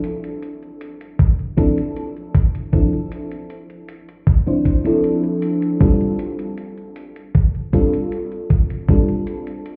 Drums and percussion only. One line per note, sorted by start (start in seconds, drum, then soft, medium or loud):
0.04 closed hi-hat medium
0.24 closed hi-hat soft
0.43 closed hi-hat soft
0.63 closed hi-hat soft
0.81 closed hi-hat medium
1.01 closed hi-hat soft
1.19 kick loud
1.19 closed hi-hat soft
1.39 closed hi-hat soft
1.58 kick medium
1.58 closed hi-hat medium
1.78 closed hi-hat soft
1.96 closed hi-hat soft
2.17 closed hi-hat soft
2.35 kick loud
2.35 closed hi-hat medium
2.55 closed hi-hat soft
2.73 kick loud
2.73 closed hi-hat soft
2.93 closed hi-hat soft
3.12 closed hi-hat medium
3.32 closed hi-hat soft
3.50 closed hi-hat soft
3.70 closed hi-hat soft
3.89 closed hi-hat medium
4.09 closed hi-hat soft
4.27 kick loud
4.27 closed hi-hat soft
4.47 closed hi-hat soft
4.65 kick medium
4.65 closed hi-hat medium
4.86 closed hi-hat soft
5.04 closed hi-hat soft
5.24 closed hi-hat soft
5.42 closed hi-hat medium
5.62 closed hi-hat soft
5.81 kick loud
5.81 closed hi-hat soft
6.01 closed hi-hat soft
6.19 closed hi-hat medium
6.39 closed hi-hat soft
6.58 closed hi-hat soft
6.78 closed hi-hat soft
6.96 closed hi-hat medium
7.16 closed hi-hat soft
7.34 kick loud
7.34 closed hi-hat soft
7.55 closed hi-hat soft
7.73 kick medium
7.73 closed hi-hat medium
7.93 closed hi-hat soft
8.12 closed hi-hat soft
8.32 closed hi-hat soft
8.50 kick medium
8.50 closed hi-hat medium
8.70 closed hi-hat soft
8.88 kick loud
8.88 closed hi-hat soft
9.08 closed hi-hat soft
9.27 closed hi-hat medium
9.47 closed hi-hat medium
9.66 closed hi-hat medium